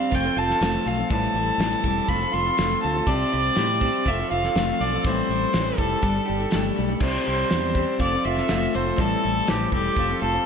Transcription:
Already playing: clean electric guitar C3 G3, steel-string acoustic guitar C4 D4 G4 C5, fiddle F5
0.11 fingered electric bass F1, clean electric guitar F2, steel-string acoustic guitar F3 A3 C4 F4 A4, fiddle G5, kick, open hi-hat
0.24 steel-string acoustic guitar C4 F4 A4
0.36 fingered electric bass F1, steel-string acoustic guitar A3 C4 F4 A4, fiddle A5
0.48 steel-string acoustic guitar C4 F4 A4, snare
0.61 fingered electric bass F1, steel-string acoustic guitar F3 A3 C4 F4 A4, snare, open hi-hat
0.85 fingered electric bass B1, clean electric guitar F3, steel-string acoustic guitar A3 C4 F4 A4, fiddle F5
0.97 steel-string acoustic guitar C4 F4 A4
1.10 fingered electric bass A1, steel-string acoustic guitar A2 E3 G3 C4 E4 A4, fiddle A5, kick, open hi-hat
1.34 fingered electric bass A1, clean electric guitar E3, steel-string acoustic guitar G3 C4 E4 A4
1.58 fingered electric bass A1, steel-string acoustic guitar A2 E3 G3 C4 E4 A4, snare, open hi-hat
1.83 fingered electric bass E1, steel-string acoustic guitar G3 C4 E4 A4, kick
2.08 fingered electric bass F1, clean electric guitar F2, steel-string acoustic guitar F3 A3 C4 F4 A4, fiddle B5, kick, open hi-hat
2.20 steel-string acoustic guitar C4 F4 A4
2.33 fingered electric bass F1, steel-string acoustic guitar A3 C4 F4 A4, fiddle C6
2.45 steel-string acoustic guitar C4 F4 A4
2.57 fingered electric bass F1, steel-string acoustic guitar F3 A3 C4 F4 A4, snare, open hi-hat
2.81 fingered electric bass D2, clean electric guitar F3, steel-string acoustic guitar A3 C4 F4 A4, fiddle A5
2.94 steel-string acoustic guitar C4 F4 A4
3.06 fingered electric bass C2, clean electric guitar C3, steel-string acoustic guitar C4 D4 G4 C5, fiddle D5, kick, open hi-hat
3.32 fingered electric bass C2, clean electric guitar G3, steel-string acoustic guitar C4 D4 G4 C5
3.55 fingered electric bass A2, clean electric guitar G3, steel-string acoustic guitar C4 D4 G4 C5, snare, open hi-hat
3.80 steel-string acoustic guitar C4 D4 G4 C5, kick
4.06 fingered electric bass F1, clean electric guitar F2, steel-string acoustic guitar F3 A3 C4 F4 A4, fiddle E5, kick, open hi-hat
4.18 steel-string acoustic guitar C4 F4 A4
4.30 fingered electric bass F1, steel-string acoustic guitar A3 C4 F4 A4, fiddle F5
4.43 steel-string acoustic guitar C4 F4 A4, snare
4.55 fingered electric bass F1, steel-string acoustic guitar F3 A3 C4 F4 A4, snare, open hi-hat
4.80 fingered electric bass B1, clean electric guitar F3, steel-string acoustic guitar A3 C4 F4 A4, fiddle D5
4.93 steel-string acoustic guitar C4 F4 A4
5.04 fingered electric bass A1, steel-string acoustic guitar A2 E3 G3 C4 E4 A4, fiddle C5, kick, open hi-hat
5.29 fingered electric bass A1, clean electric guitar E3, steel-string acoustic guitar G3 C4 E4 A4
5.52 fingered electric bass A1, steel-string acoustic guitar A2 E3 G3 C4 E4 A4, snare, open hi-hat
5.77 fingered electric bass F1, steel-string acoustic guitar G3 C4 E4 A4, fiddle A4, kick
6.02 fingered electric bass G1, steel-string acoustic guitar G3 D4 G4 A4, kick, open hi-hat
6.14 steel-string acoustic guitar D4 G4 A4
6.26 fingered electric bass G1, steel-string acoustic guitar G3 D4 G4 A4
6.39 steel-string acoustic guitar D4 G4 A4
6.50 steel-string acoustic guitar G3 D4 G4 A4, clean electric guitar A3, snare, open hi-hat
6.55 fingered electric bass G1
6.76 fingered electric bass B1, steel-string acoustic guitar G3 D4 G4 A4
6.87 steel-string acoustic guitar D4 G4 A4
7.00 fingered electric bass C2, clean electric guitar C3, steel-string acoustic guitar C4 D4 G4 C5, fiddle C5, kick, crash
7.23 clean electric guitar G3, steel-string acoustic guitar C4 D4 G4 C5
7.28 fingered electric bass C2
7.48 clean electric guitar G3, steel-string acoustic guitar C4 D4 G4 C5, snare, open hi-hat
7.52 fingered electric bass E2
7.74 steel-string acoustic guitar C4 D4 G4 C5, kick
7.99 fingered electric bass F1, clean electric guitar F2, steel-string acoustic guitar F3 A3 C4 F4 A4, fiddle D5, kick, open hi-hat
8.12 steel-string acoustic guitar C4 F4 A4
8.23 fingered electric bass F1, steel-string acoustic guitar A3 C4 F4 A4, fiddle E5
8.37 steel-string acoustic guitar C4 F4 A4, snare
8.48 fingered electric bass F1, steel-string acoustic guitar F3 A3 C4 F4 A4, snare, open hi-hat
8.74 fingered electric bass F1, clean electric guitar F3, steel-string acoustic guitar A3 C4 F4 A4, fiddle C5
8.85 steel-string acoustic guitar C4 F4 A4
8.96 fingered electric bass A1, steel-string acoustic guitar A2 E3 G3 C4 E4 A4, fiddle A4, kick, open hi-hat
9.01 clean electric guitar A2
9.22 fingered electric bass A1, clean electric guitar E3, steel-string acoustic guitar G3 C4 E4 A4
9.47 fingered electric bass A1, steel-string acoustic guitar A2 E3 G3 C4 E4 A4, fiddle G4, snare, open hi-hat
9.72 fingered electric bass E1, steel-string acoustic guitar G3 C4 E4 A4, fiddle G4, kick
9.96 fingered electric bass F1, clean electric guitar F2, steel-string acoustic guitar F3 A3 C4 F4 A4, kick, open hi-hat
10.08 steel-string acoustic guitar C4 F4 A4
10.21 fingered electric bass F1, steel-string acoustic guitar A3 C4 F4 A4, fiddle A4
10.32 steel-string acoustic guitar C4 F4 A4

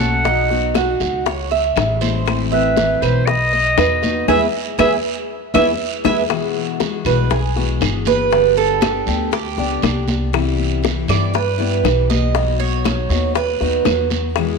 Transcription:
Already playing: upright bass B1, cuban tres A4
0.00 steel-string acoustic guitar F#3 A3 C#4 F#4, clarinet F#5, high bongo
0.24 steel-string acoustic guitar B2 F#3 B3 D#4 F#4, cuban tres D#4, high bongo, high conga, long guiro
0.50 steel-string acoustic guitar F#3 B3 D#4 F#4, high bongo, high conga
0.74 steel-string acoustic guitar F#3 B3 D#4 F#4, cuban tres F#4, high bongo, high conga, short guiro, claves
1.00 upright bass C#2, high bongo, high conga, short guiro
1.26 cuban tres C#5, muted steel-string acoustic guitar stroke, high bongo, high conga, long guiro
1.51 cuban tres E5, high bongo, high conga
1.76 upright bass A1, steel-string acoustic guitar E3 G#3 C#4 E4, high bongo, low bongo, high conga, short guiro, claves
2.01 steel-string acoustic guitar E3 G#3 C#4 E4, cuban tres C5, high conga, short guiro
2.26 steel-string acoustic guitar E3 A3 C4 E4, high bongo, high conga, long guiro, claves
2.52 steel-string acoustic guitar A3 C4 E4, clarinet B4, cuban tres E5, high bongo, high conga
2.77 steel-string acoustic guitar E3 A3 C4 E4, high bongo, high conga, short guiro
3.01 upright bass B1, cuban tres B4, clarinet C5, high bongo, high conga, short guiro, claves
3.26 clarinet D#5, muted steel-string acoustic guitar stroke, high bongo, high conga, long guiro
3.53 cuban tres D#5, high conga
3.77 upright bass E2, steel-string acoustic guitar F#3 B3 D#4 F#4, cuban tres B4, high bongo, low bongo, high conga, short guiro, claves
4.02 steel-string acoustic guitar F#3 B3 D#4 F#4, high bongo, high conga, short guiro
4.28 upright bass E2, steel-string acoustic guitar G#3 B3 E4, cuban tres G#4 B4 E5, clarinet E5, low bongo, high conga, long guiro, claves
4.78 upright bass E2, steel-string acoustic guitar G#3 B3 E4, cuban tres G#4 B4 E5, clarinet E5, low bongo, high conga, long guiro, claves
5.54 upright bass E2, steel-string acoustic guitar G#3 B3 E4, cuban tres G#4 B4 E5, clarinet E5, low bongo, high conga, long guiro, claves
6.04 upright bass E2, steel-string acoustic guitar G#3 B3 E4, cuban tres G#4 B4 E5, clarinet E5, low bongo, high conga, long guiro, claves
6.29 steel-string acoustic guitar B2 E3 G#3 B3 F#4, high bongo, high conga, long guiro, claves
6.55 high conga
6.80 steel-string acoustic guitar E3 G#3 B3 F#4, high bongo, high conga, short guiro
7.05 upright bass B1, steel-string acoustic guitar E3 G#3 B3 F#4, cuban tres B4, high bongo, low conga, short guiro, claves
7.30 cuban tres G#4, muted steel-string acoustic guitar stroke, high bongo, high conga, low conga, long guiro
7.56 steel-string acoustic guitar E3 G#3 B3 F#4, high bongo, high conga
7.81 upright bass G1, steel-string acoustic guitar E3 G#3 B3 F#4, high bongo, low bongo, high conga, short guiro, claves
8.05 cuban tres B4, high bongo, high conga, short guiro
8.31 steel-string acoustic guitar D3 G3 B3 D4 G4, high bongo, high conga, long guiro
8.57 cuban tres A4, high conga
8.81 steel-string acoustic guitar G3 B3 D4 G4, high bongo, high conga, short guiro, claves
9.07 upright bass D2, steel-string acoustic guitar G3 B3 D4 G4, high bongo, high conga, short guiro
9.31 cuban tres G4, muted steel-string acoustic guitar stroke, high bongo, high conga, long guiro
9.57 upright bass C#2, steel-string acoustic guitar G3 B3 D4 G4, high bongo, high conga
9.82 upright bass C2, steel-string acoustic guitar G3 B3 D4 G4, high bongo, low bongo, high conga, short guiro, claves
10.08 high bongo, high conga, short guiro
10.33 steel-string acoustic guitar C3 E3 G3 B3 E4, high bongo, high conga, long guiro, claves
10.59 high conga
10.83 steel-string acoustic guitar E3 G3 B3 E4, high bongo, high conga, short guiro
11.08 upright bass G2, steel-string acoustic guitar E3 G3 B3 E4, cuban tres D5, high bongo, low conga, short guiro, claves
11.33 cuban tres B4, muted steel-string acoustic guitar stroke, high bongo, high conga, long guiro
11.58 steel-string acoustic guitar E3 G3 B3 E4, high bongo, high conga
11.83 upright bass B1, steel-string acoustic guitar E3 G3 B3 E4, high bongo, low bongo, high conga, short guiro, claves
12.10 cuban tres D#5, high bongo, high conga, short guiro
12.35 steel-string acoustic guitar B2 F#3 B3 D#4 F#4, high bongo, high conga, long guiro
12.60 cuban tres C#5, high conga
12.84 steel-string acoustic guitar F#3 B3 D#4 F#4, high bongo, high conga, short guiro, claves
13.09 upright bass D#2, steel-string acoustic guitar F#3 B3 D#4 F#4, high bongo, high conga, short guiro
13.35 cuban tres B4, muted steel-string acoustic guitar stroke, high bongo, high conga, long guiro
13.61 upright bass D#2, steel-string acoustic guitar F#3 B3 D#4 F#4, high bongo, high conga
13.85 upright bass E2, steel-string acoustic guitar F#3 D#4 F#4, high bongo, low bongo, high conga, short guiro, claves
14.10 high bongo, high conga, short guiro
14.36 steel-string acoustic guitar B2 E3 G#3 B3 E4, high bongo, high conga, long guiro, claves

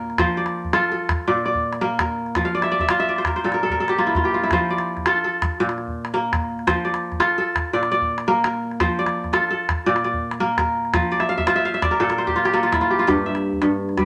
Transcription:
Already playing: kora A#2 A#3 A#4 D5
0.10 calabash click
0.18 kora F3 C5, calabash thump, calabash click
0.37 kora D5, calabash click
0.46 calabash click
0.64 calabash thump
0.73 kora F4 A4, calabash click
0.92 kora A4
1.09 calabash thump, calabash click
1.28 kora A#2 D5
1.45 kora D5, calabash click
1.55 calabash thump
1.73 calabash click
1.81 kora A#3 A#4, calabash click
1.99 kora A#4, calabash thump, calabash click
2.26 calabash click
2.35 kora F3, calabash thump, calabash click
2.45 kora F5
2.55 kora D5
2.62 kora E5, calabash click
2.71 kora D5, calabash click
2.79 kora E5, calabash thump, calabash click
2.89 kora F4 F5, calabash click
2.99 kora E5, calabash click
3.09 kora D5
3.16 kora C5, calabash click
3.25 kora A#4, calabash thump, calabash click
3.36 kora C5
3.44 kora A#2 A4
3.52 kora A#4, calabash click
3.63 kora A4
3.70 kora A#4, calabash thump, calabash click
3.80 kora A4
3.88 kora G4, calabash click
3.98 kora A#3 F4
4.07 kora E4
4.15 kora F4, calabash thump
4.24 kora G4, calabash click
4.33 kora F4, calabash click
4.42 kora E4, calabash click
4.51 kora F3 C5, calabash thump, calabash click
4.69 kora D5, calabash click
4.78 calabash click
4.97 calabash thump, calabash click
5.06 kora F4 A4, calabash click
5.24 kora A4
5.42 calabash thump, calabash click
5.60 kora A#2
5.69 calabash click
5.78 calabash click
5.88 calabash thump
6.05 calabash click
6.14 kora A#3 A#4, calabash click
6.33 calabash thump, calabash click
6.59 calabash click
6.67 kora F3 C5, calabash thump, calabash click
6.85 kora D5, calabash click
6.94 calabash click
7.12 calabash thump, calabash click
7.20 kora F4 A4, calabash click
7.38 kora A4
7.56 calabash thump, calabash click
7.73 kora A#2 D5
7.83 calabash click
7.91 kora D5, calabash click
8.01 calabash thump
8.18 calabash click
8.27 kora A#3 A#4, calabash click
8.44 kora A#4, calabash click
8.71 calabash click
8.80 kora F3 C5, calabash thump, calabash click
8.99 kora D5
9.06 calabash click
9.24 calabash thump, calabash click
9.33 kora F4 A4, calabash click
9.51 kora A4
9.69 calabash thump, calabash click
9.86 kora A#2 D5
9.96 calabash click
10.04 kora D5, calabash click
10.14 calabash thump
10.31 calabash click
10.40 kora A#3 A#4, calabash click
10.58 kora A#4, calabash thump, calabash click
10.85 calabash click
10.94 kora F3, calabash thump, calabash click
11.03 calabash click
11.11 kora D5, calabash click
11.20 kora E5, calabash click
11.29 kora F5
11.38 kora E5, calabash thump, calabash click
11.47 kora F4 C5, calabash click
11.56 kora E5
11.65 kora F5, calabash click
11.74 kora E5, calabash click
11.82 kora D5, calabash thump, calabash click
11.91 kora A#4, calabash click
12.00 kora A#2 A4, calabash click
12.09 kora A#4, calabash click
12.18 kora C5, calabash click
12.27 kora G4, calabash thump
12.36 kora F4, calabash click
12.45 kora G4, calabash click
12.53 kora A#3 A4, calabash click
12.63 kora F4
12.72 kora E4, calabash thump, calabash click
12.81 kora F4
12.90 kora G4
12.99 kora F4
13.07 kora G2 G4, calabash thump, calabash click
13.18 calabash click
13.26 kora E5
13.35 calabash click
13.53 calabash thump
13.62 kora G2, calabash click
13.71 calabash click
13.89 calabash click
13.97 kora G3, calabash thump, calabash click

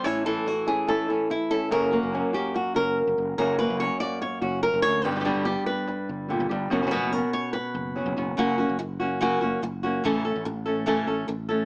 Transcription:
0.03 nylon-string guitar A2 E3 A3 C#4 E4 C#5
0.25 nylon-string guitar E3 A3 C#4 E4 A4
0.46 nylon-string guitar F#4, muted nylon-string guitar stroke
0.66 nylon-string guitar A3 C#4 E4 G#4
0.87 nylon-string guitar E3 A3 C#4 E4 A4
1.08 nylon-string guitar A3 C#4 E4
1.30 nylon-string guitar E4, muted nylon-string guitar stroke
1.50 nylon-string guitar A3 C#4 E4 A4
1.70 fretless electric bass F#1, nylon-string guitar F#2 C#3 F#3 A#3 C#4 F#4 A#4
1.91 nylon-string guitar A#3 C#4 F#4
2.03 fretless electric bass F#1
2.12 nylon-string guitar F#3 A#3 C#4 F#4
2.33 nylon-string guitar A#3 C#4 F#4 G4
2.54 nylon-string guitar F#4, muted nylon-string guitar stroke
2.74 fretless electric bass F#1, nylon-string guitar A#3 C#4 F#4 A#4
3.07 fretless electric bass F#1
3.18 fretless electric bass F#1
3.38 fretless electric bass F#1, nylon-string guitar F#2 C#3 F#3 A#3 C#4 F#4 A#4
3.59 nylon-string guitar A#3 C#4 F#4 B4
3.70 fretless electric bass F#1
3.79 nylon-string guitar F#3 A#3 C#4 F#4 C#5
4.00 nylon-string guitar A#3 C#4 F#4 D5
4.21 nylon-string guitar C#5, muted nylon-string guitar stroke
4.41 fretless electric bass F#1, nylon-string guitar A#3 C#4 F#4
4.63 nylon-string guitar A#4
4.74 fretless electric bass F#1
4.82 fretless electric bass D2, nylon-string guitar F#2 C#5
5.04 fretless electric bass G1, nylon-string guitar G2 B2 D3 G3 B3 G4 B4
5.11 nylon-string guitar D3 G3 B3 G4
5.16 nylon-string guitar D3 G3 B3 G4
5.20 nylon-string guitar D3 G3 B3 G4
5.25 nylon-string guitar B2 D3 G3 B3 D4 G4
5.35 fretless electric bass G1
5.45 nylon-string guitar G3 B3 G4
5.66 nylon-string guitar B4
5.87 muted nylon-string guitar stroke
6.09 fretless electric bass G1
6.29 nylon-string guitar A#2 D3 G3 B3 G4
6.40 fretless electric bass G1
6.49 fretless electric bass G1, nylon-string guitar G2 G3 B3 G4
6.70 fretless electric bass F#1, nylon-string guitar F#2 B2 F#3 B3 C#4 F#4
6.82 nylon-string guitar F#3 B3 C#4 F#4
6.87 nylon-string guitar F#3 B3 C#4 F#4
6.91 nylon-string guitar B2 F#3 B3 C#4 F#4 B4
7.03 fretless electric bass F#1
7.12 nylon-string guitar B3 C#4 F#4 A#4
7.33 nylon-string guitar C#5
7.53 nylon-string guitar B4, muted nylon-string guitar stroke
7.75 fretless electric bass F#1
7.96 nylon-string guitar F#3 B3 C#4 F#4
8.06 fretless electric bass F#1
8.17 fretless electric bass F#1, nylon-string guitar B3 C#4 F#4
8.37 fretless electric bass F#1, nylon-string guitar C#3 F#3 A#3 C#4 F#4
8.58 nylon-string guitar A#3 C#4 F#4
8.69 fretless electric bass F#1
8.79 muted nylon-string guitar stroke
9.00 nylon-string guitar A#3 C#4 F#4
9.21 nylon-string guitar C#3 F#3 A#3 C#4 F#4
9.41 fretless electric bass F#1, nylon-string guitar A#3 C#4 F#4
9.62 fretless electric bass F#1, muted nylon-string guitar stroke
9.83 nylon-string guitar A#3 C#4 F#4
10.04 fretless electric bass A1, nylon-string guitar C#3 E3 A3 C#4 A4
10.25 nylon-string guitar A3 C#4 A4
10.36 fretless electric bass A1
10.45 muted nylon-string guitar stroke
10.66 nylon-string guitar A3 C#4 A4
10.86 nylon-string guitar C#3 E3 A3 C#4 A4
11.07 fretless electric bass A1, nylon-string guitar A3 C#4 A4
11.28 fretless electric bass A1, muted nylon-string guitar stroke
11.49 nylon-string guitar A3 C#4 A4

